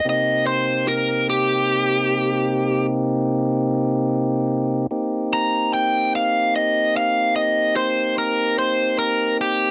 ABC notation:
X:1
M:12/8
L:1/8
Q:3/8=49
K:Cm
V:1 name="Overdriven electric guitar"
e c B G4 z4 z | z b g f e f e c B c B G |]
V:2 name="Tonewheel organ"
[C,B,CEG]12 | [B,CEG]12 |]